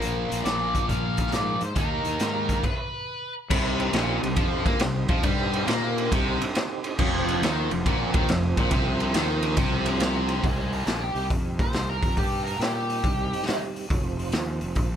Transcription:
Already playing: distorted electric guitar A#2 F3 A#3, tonewheel organ A#3 D4 F4 A#4
0.02 fingered electric bass A#1, closed hi-hat
0.32 fingered electric bass A#1, closed hi-hat
0.44 fingered electric bass A#1, lead electric guitar D5, snare, closed hi-hat
0.75 kick, closed hi-hat
0.88 fingered electric bass A#1, lead electric guitar F5, kick, closed hi-hat
1.17 kick, closed hi-hat
1.27 snare
1.32 fingered electric bass G#2, lead electric guitar D5, snare, closed hi-hat
1.61 fingered electric bass G#2, lead electric guitar C5, closed hi-hat
1.75 fingered electric bass D#2, distorted electric guitar D#3 A#3 D#4, tonewheel organ B3 E4 G#4 B4, lead electric guitar A#4, kick, closed hi-hat
1.91 tonewheel organ A#3 D#4 G4 A#4
2.05 fingered electric bass D#2, closed hi-hat
2.19 fingered electric bass G#2, snare, closed hi-hat
2.49 kick, closed hi-hat
2.64 lead electric guitar B4, kick, crash
3.49 fingered electric bass C2, distorted electric guitar C3, tonewheel organ C4 D#4 G4 C5, kick, crash
3.80 ride
3.93 fingered electric bass A#1, distorted electric guitar A#2, snare, ride
4.23 fingered electric bass C2, distorted electric guitar C3, ride
4.36 fingered electric bass F2, distorted electric guitar F3, kick, ride
4.66 fingered electric bass A#2, distorted electric guitar A#3, kick, ride
4.79 fingered electric bass C2, distorted electric guitar C3, snare, ride
5.08 fingered electric bass F2, distorted electric guitar F3, kick, ride
5.23 fingered electric bass G2, distorted electric guitar G3, kick, ride
5.53 ride
5.66 fingered electric bass A#2, distorted electric guitar A#3, snare, ride
5.98 ride
6.12 fingered electric bass C2, distorted electric guitar C3, kick, ride
6.41 ride
6.55 snare, ride
6.84 ride
6.99 fingered electric bass F1, distorted electric guitar F2, tonewheel organ F#3 C#4 F#4 C#5, kick, crash
7.16 tonewheel organ F3 C4 F4 C5
7.28 ride
7.42 fingered electric bass D#2, distorted electric guitar D#3, snare, ride
7.71 fingered electric bass F1, distorted electric guitar F2, ride
7.86 fingered electric bass A#1, distorted electric guitar A#2, kick, ride
8.14 fingered electric bass D#2, distorted electric guitar D#3, kick, ride
8.28 fingered electric bass F1, distorted electric guitar F2, snare, ride
8.57 fingered electric bass A#1, distorted electric guitar A#2, kick, ride
8.71 fingered electric bass C2, distorted electric guitar C3, kick, ride
9.00 ride
9.14 fingered electric bass D#2, distorted electric guitar D#3, snare, ride
9.42 ride
9.57 fingered electric bass C2, distorted electric guitar C3, kick, ride
9.86 ride
10.00 snare, ride
10.28 ride
10.43 fingered electric bass C2, tonewheel organ G3 C4 D#4 G4, lead electric guitar D#4 C5, kick, open hi-hat
10.58 lead electric guitar D#4 C5
10.73 lead electric guitar G4 A#4, open hi-hat
10.86 fingered electric bass A#1, lead electric guitar G4 A#4, snare, open hi-hat
11.02 lead electric guitar G4
11.15 fingered electric bass C2, open hi-hat
11.30 fingered electric bass F2, kick, open hi-hat
11.59 fingered electric bass A#2, lead electric guitar C5, kick, open hi-hat
11.73 fingered electric bass C2, snare, open hi-hat
11.89 lead electric guitar A#4
12.03 fingered electric bass F2, kick, open hi-hat
12.17 fingered electric bass G2, lead electric guitar G4, kick, open hi-hat
12.44 lead electric guitar A#4, open hi-hat
12.58 fingered electric bass A#2, lead electric guitar G4, open hi-hat
12.63 snare
12.74 lead electric guitar G4
12.90 open hi-hat
13.04 fingered electric bass C2, kick, open hi-hat
13.33 open hi-hat
13.42 snare
13.47 snare, open hi-hat
13.76 open hi-hat
13.89 fingered electric bass F1, tonewheel organ F#3 C#4 F#4 C#5, kick, open hi-hat
14.04 tonewheel organ F3 C4 F4 C5
14.19 open hi-hat
14.32 fingered electric bass D#2, snare, open hi-hat
14.61 fingered electric bass F1, open hi-hat
14.75 fingered electric bass A#1, kick, open hi-hat

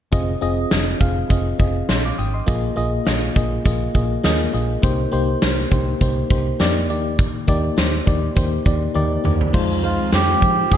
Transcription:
0.12 fingered electric bass F1, fm electric piano C4 F4 G#4 D#5, kick, closed hi-hat
0.41 fingered electric bass F1, fm electric piano C4 F4 G#4 D#5, closed hi-hat
0.71 fingered electric bass F1, fm electric piano C4 F4 G#4 D#5, snare, closed hi-hat
1.00 fingered electric bass F1, fm electric piano C4 F4 G#4 F5, kick, closed hi-hat
1.29 fingered electric bass F1, fm electric piano C4 F4 G#4 D#5, kick, closed hi-hat
1.59 fingered electric bass F1, fm electric piano C4 F4 G#4 D#5, kick, closed hi-hat
1.89 fingered electric bass A#1, fm electric piano D#5 C6, snare, closed hi-hat
2.05 fm electric piano F5 D6
2.18 fingered electric bass G#1, fm electric piano G5 D#6, closed hi-hat
2.34 fm electric piano D#5 C6
2.46 fingered electric bass A#1, fm electric piano A#2 A#3 F4 G#4 D#5, kick, closed hi-hat
2.76 fingered electric bass A#1, fm electric piano A#3 F4 G#4 D#5, closed hi-hat
3.05 fingered electric bass A#1, fm electric piano A#3 F4 G#4 D#5, snare, closed hi-hat
3.35 fingered electric bass A#1, fm electric piano A#3 F4 G#4 D#5, kick, closed hi-hat
3.65 fingered electric bass A#1, fm electric piano A#3 F4 G#4 D#5, kick, closed hi-hat
3.94 fingered electric bass A#1, fm electric piano A#3 F4 G#4 D#5, kick, closed hi-hat
4.23 fingered electric bass D#2, fm electric piano A#3 F4 G#4 D#5, snare, closed hi-hat
4.53 fingered electric bass A#1, fm electric piano A#3 F4 G#4 D#5, closed hi-hat
4.82 fingered electric bass C2, fm electric piano C3 A#3 D#4 G4 C5, kick, closed hi-hat
5.12 fingered electric bass C2, fm electric piano A#3 D#4 G4 C5, closed hi-hat
5.42 fingered electric bass C2, fm electric piano A#3 D#4 G4 C5, snare, closed hi-hat
5.71 fingered electric bass C2, fm electric piano A#3 D#4 G4 C5, kick, closed hi-hat
6.01 fingered electric bass C2, fm electric piano A#3 D#4 G4 C5, kick, closed hi-hat
6.30 fingered electric bass C2, fm electric piano A#3 D#4 G4 C5, kick, closed hi-hat
6.59 fingered electric bass F2, fm electric piano A#3 D#4 G4 D5, snare, closed hi-hat
6.89 fingered electric bass D#2, fm electric piano D#3 A#3 D#4 G4 D5, closed hi-hat
7.19 kick, closed hi-hat
7.47 fingered electric bass D#2, fm electric piano A#3 D#4 G4 D5, kick, closed hi-hat
7.76 fingered electric bass D#2, fm electric piano A#3 D#4 G4 C5, snare, closed hi-hat
8.06 fingered electric bass D#2, fm electric piano A#3 D#4 G4 D5, kick, closed hi-hat
8.36 fingered electric bass D#2, fm electric piano A#3 D#4 G4 C5, kick, closed hi-hat
8.65 fingered electric bass D#2, fm electric piano A#3 D#4 G4 D5, kick, closed hi-hat
8.94 fingered electric bass D#2, fm electric piano A#3 D#4 G4 D5, high tom
9.24 fingered electric bass D#2, fm electric piano A#3 D#4 G4 D5, mid tom
9.41 floor tom
9.53 fingered electric bass F2, string machine D#3 F3 G#3 C4 F4, fm electric piano G#3 D#4 F4 C5, kick, crash
9.82 fm electric piano G#3 D#4 F4 C5, melodica F4, closed hi-hat
10.12 fingered electric bass F2, fm electric piano G#3 D#4 F4 C5, melodica G4, snare, closed hi-hat
10.41 fingered electric bass F3, fm electric piano G#3 D#4 F4 C5, kick, closed hi-hat
10.71 fingered electric bass F2, fm electric piano G#3 D#4 F4 C5, melodica G#4, kick, closed hi-hat

